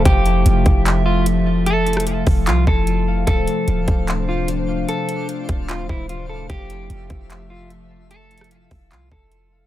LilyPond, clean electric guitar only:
\new Staff \with { instrumentName = "Clean electric guitar" } { \time 4/4 \key f \major \tempo 4 = 149 g'2~ g'8 f'8 r4 | a'4 r4 f'8 a'4. | a'2~ a'8 f'8 r4 | a'4 r4 f'8 e'8 f'8 a'8 |
g'2~ g'8 f'8 r4 | a'4 r4 f'8 a'4. | }